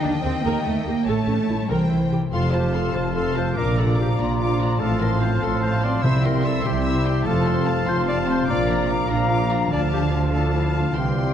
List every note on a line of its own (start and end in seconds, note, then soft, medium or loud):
0.00 1.09 D#3 medium
0.00 0.25 D4 medium
0.00 0.12 D#4 soft
0.00 1.09 A#4 soft
0.00 1.06 D#5 medium
0.00 1.09 G5 medium
0.05 0.13 D#2 soft
0.23 0.33 D#2 soft
0.23 0.45 C4 medium
0.23 0.86 G4 soft
0.23 0.34 G4 soft
0.44 0.53 D#2 medium
0.44 0.65 A#3 medium
0.44 0.64 A#4 medium
0.64 0.75 D#2 soft
0.64 0.86 A3 medium
0.64 0.74 D#4 soft
0.64 1.10 D#5 soft
0.86 0.95 D#2 soft
0.86 1.08 A#3 medium
0.86 0.95 G4 soft
0.86 1.10 G4 soft
1.06 1.15 A1 medium
1.06 1.72 A2 soft
1.06 1.70 A3 medium
1.06 1.28 A4 soft
1.06 1.69 C#5 soft
1.06 1.70 A5 soft
1.28 1.36 A1 soft
1.28 1.73 A3 soft
1.28 1.36 C#4 soft
1.49 1.58 A1 soft
1.49 1.73 C#4 soft
1.49 1.57 E4 soft
1.49 1.73 A4 soft
1.69 1.78 C2 medium
1.69 2.35 C3 soft
1.69 2.33 E3 medium
1.69 1.89 A#4 soft
1.69 2.14 C5 soft
1.69 2.13 G5 soft
1.90 1.99 C2 soft
1.90 2.35 A#3 soft
1.90 1.98 E4 soft
2.12 2.20 C2 soft
2.12 2.73 C4 soft
2.12 2.20 G4 soft
2.12 2.35 G4 soft
2.30 2.88 F1 medium
2.30 2.87 F2 medium
2.30 3.58 F2 medium
2.30 2.91 C3 medium
2.30 2.90 A3 medium
2.30 2.90 F4 medium
2.30 2.52 A4 soft
2.30 2.53 F5 soft
2.30 3.60 F5 medium
2.30 3.53 A5 medium
2.30 2.53 C6 soft
2.34 2.92 F3 soft
2.34 2.44 F4 medium
2.52 3.58 C3 soft
2.52 2.74 F4 soft
2.52 2.74 G4 medium
2.52 2.75 C5 soft
2.52 2.75 A5 soft
2.73 3.35 C4 soft
2.73 2.95 A4 soft
2.73 2.97 A4 medium
2.73 2.95 F5 soft
2.73 2.95 C6 soft
2.93 3.50 F1 medium
2.93 3.49 F2 medium
2.93 3.56 C3 medium
2.93 3.55 A3 medium
2.93 3.54 F4 medium
2.93 3.16 F4 soft
2.93 3.16 F4 medium
2.93 3.58 A4 soft
2.93 3.15 C5 soft
2.93 3.15 A5 soft
2.97 3.55 F3 soft
3.13 4.16 F4 soft
3.13 3.35 A4 soft
3.13 3.39 A4 medium
3.13 3.34 F5 soft
3.13 3.34 C6 soft
3.36 3.59 C4 soft
3.36 3.56 F4 soft
3.36 3.57 C5 soft
3.36 3.58 C5 medium
3.36 3.57 A5 soft
3.55 4.11 A#1 medium
3.55 4.11 A#2 medium
3.55 4.81 A#2 medium
3.55 4.18 A#2 medium
3.55 4.17 F3 medium
3.55 4.18 D4 medium
3.55 4.16 F4 soft
3.55 3.76 F4 soft
3.55 3.80 A#4 medium
3.55 4.80 D5 medium
3.55 3.76 F5 soft
3.55 4.78 A#5 medium
3.55 3.76 D6 soft
3.76 4.81 A#3 soft
3.76 3.99 D4 soft
3.76 3.99 A4 medium
3.76 3.99 D5 soft
3.76 3.98 A#5 soft
3.98 4.37 D4 soft
3.98 4.19 F4 soft
3.98 4.10 G4 medium
3.98 4.20 F5 soft
3.98 4.19 D6 soft
4.18 4.73 A#1 medium
4.18 4.72 A#2 medium
4.18 4.79 A#2 soft
4.18 4.79 F3 soft
4.18 4.40 D4 soft
4.18 4.80 D4 medium
4.18 5.41 F4 soft
4.18 4.79 F4 medium
4.18 4.81 F4 medium
4.18 4.40 D5 soft
4.18 4.39 A#5 soft
4.39 4.81 D4 soft
4.39 4.59 F4 soft
4.39 4.60 F5 soft
4.39 4.59 D6 soft
4.59 5.82 F3 soft
4.59 4.80 D4 soft
4.59 4.81 D5 soft
4.59 4.80 A#5 soft
4.80 5.35 A1 medium
4.80 5.34 A2 medium
4.80 6.05 A2 medium
4.80 5.41 A2 medium
4.80 5.40 F3 medium
4.80 5.00 A3 soft
4.80 5.42 C4 medium
4.80 5.41 F4 medium
4.80 5.01 A4 medium
4.80 6.06 F5 medium
4.80 5.00 F5 soft
4.80 4.99 A5 soft
4.80 7.01 C6 medium
5.00 6.05 A3 soft
5.00 5.22 C4 soft
5.00 5.10 A#4 medium
5.00 5.22 A5 soft
5.00 5.21 C6 soft
5.21 5.43 A3 soft
5.21 5.61 C4 soft
5.21 5.41 C5 medium
5.21 5.43 F5 soft
5.21 5.42 A5 soft
5.41 5.97 A1 medium
5.41 5.96 A2 medium
5.41 6.02 A2 soft
5.41 6.02 F3 soft
5.41 5.63 C4 soft
5.41 6.02 C4 medium
5.41 6.05 F4 soft
5.41 6.02 F4 medium
5.41 5.62 A4 medium
5.41 5.63 A5 soft
5.41 5.62 C6 soft
5.62 5.81 A3 soft
5.62 7.65 C4 soft
5.62 5.86 C5 medium
5.62 5.82 F5 soft
5.62 5.82 A5 soft
5.83 6.05 F3 soft
5.83 6.03 C4 soft
5.83 6.04 D5 medium
5.83 6.04 A5 soft
5.83 6.04 C6 soft
6.02 6.57 C2 medium
6.02 6.63 C3 medium
6.02 6.57 C3 medium
6.02 6.61 C3 medium
6.02 7.28 C3 medium
6.02 6.63 G3 medium
6.02 6.63 C4 medium
6.02 6.22 E4 soft
6.02 6.63 E4 medium
6.02 6.23 C5 medium
6.02 6.22 E5 soft
6.02 7.27 E5 medium
6.02 6.22 E6 soft
6.23 7.28 G3 soft
6.23 6.44 C4 soft
6.23 6.44 A#4 medium
6.23 6.44 G5 soft
6.23 6.44 C6 soft
6.43 6.64 E4 soft
6.43 7.04 E4 soft
6.43 6.65 A4 medium
6.43 6.64 E5 soft
6.43 6.65 E6 soft
6.64 7.19 C2 medium
6.64 7.24 C3 medium
6.64 7.19 C3 medium
6.64 7.25 G3 medium
6.64 7.24 C4 medium
6.64 6.85 C4 soft
6.64 7.24 E4 medium
6.64 7.28 G4 medium
6.64 8.51 C5 soft
6.64 6.85 G5 soft
6.64 6.85 C6 medium
6.84 7.04 E4 soft
6.84 7.28 G4 soft
6.84 7.04 E5 soft
6.84 7.03 E6 soft
7.05 7.26 C4 medium
7.05 7.27 E4 soft
7.05 7.25 G5 soft
7.05 7.25 C6 soft
7.25 7.81 F1 medium
7.25 7.80 F2 medium
7.25 8.51 F2 medium
7.25 7.87 C3 medium
7.25 7.88 F3 medium
7.25 7.45 A3 medium
7.25 7.85 C4 medium
7.25 7.86 F4 medium
7.25 7.88 A4 medium
7.25 7.45 F5 medium
7.25 9.41 F5 medium
7.25 7.44 A5 soft
7.25 8.48 C6 medium
7.45 8.51 C3 soft
7.45 7.66 C4 soft
7.45 7.66 A5 soft
7.45 7.66 C6 medium
7.67 7.87 A3 soft
7.67 8.07 C4 soft
7.67 7.87 F5 soft
7.67 7.87 A5 medium
7.86 8.42 F1 medium
7.86 8.41 F2 medium
7.86 8.49 C3 medium
7.86 8.49 F3 medium
7.86 8.47 C4 medium
7.86 8.08 C4 medium
7.86 8.47 F4 medium
7.86 8.89 F4 soft
7.86 7.97 C5 medium
7.86 8.08 A5 medium
7.86 8.07 C6 medium
8.08 8.27 A3 medium
8.08 8.50 C4 soft
8.08 8.18 D5 medium
8.08 8.27 F5 medium
8.08 8.27 A5 soft
8.27 8.68 F3 soft
8.27 8.50 C4 soft
8.27 8.50 C5 medium
8.27 8.48 A5 medium
8.27 8.49 C6 soft
8.47 9.04 A#1 medium
8.47 9.03 A#2 medium
8.47 9.74 A#2 medium
8.47 9.11 A#2 medium
8.47 9.10 F3 medium
8.47 9.09 D4 medium
8.47 9.09 F4 medium
8.47 8.69 F4 medium
8.47 8.89 D5 medium
8.47 8.67 F5 medium
8.47 9.69 A#5 medium
8.47 8.68 D6 medium
8.68 9.91 F3 soft
8.68 8.91 D4 soft
8.68 8.89 D5 soft
8.68 8.90 A#5 soft
8.89 9.30 F4 soft
8.89 9.11 F4 soft
8.89 9.10 F5 soft
8.89 9.10 D6 soft
9.09 9.64 A#1 medium
9.09 9.64 A#2 medium
9.09 9.72 F3 medium
9.09 9.71 D4 medium
9.09 9.31 D4 soft
9.09 9.71 F4 medium
9.09 9.31 D5 soft
9.09 9.69 F5 medium
9.09 9.31 A#5 medium
9.14 9.73 A#2 medium
9.30 10.12 F4 soft
9.30 9.51 F4 soft
9.30 9.50 F5 soft
9.30 9.50 D6 soft
9.51 9.73 A#3 soft
9.51 9.71 D4 soft
9.51 9.72 D5 soft
9.51 9.72 A#5 soft
9.70 10.93 D2 medium
9.70 10.34 A2 medium
9.70 10.93 D3 medium
9.70 10.99 D3 medium
9.70 10.34 F3 medium
9.70 10.30 D4 soft
9.70 10.31 D4 medium
9.70 10.32 F4 medium
9.70 9.82 D5 medium
9.70 10.29 F5 medium
9.70 11.34 F5 medium
9.70 10.30 A5 medium
9.70 10.95 A5 medium
9.93 10.99 F3 soft
9.93 10.02 G4 medium
10.13 10.53 F4 soft
10.13 10.34 F4 soft
10.32 10.81 A2 soft
10.32 10.81 F3 soft
10.32 10.95 D4 soft
10.32 10.95 F4 soft
10.32 10.98 A4 soft
10.32 10.54 A4 medium
10.32 10.95 F5 soft
10.32 10.96 A5 soft
10.54 10.79 E4 medium
10.75 10.98 A3 soft
10.75 10.97 F4 soft
10.95 11.34 C2 soft
10.95 11.34 G2 soft
10.95 11.34 C3 soft
10.95 11.34 E3 soft
10.95 11.34 G3 soft
10.95 11.34 C4 soft
10.95 11.34 G4 medium
10.95 11.34 G5 soft
10.95 11.34 C6 soft
11.17 11.34 G3 soft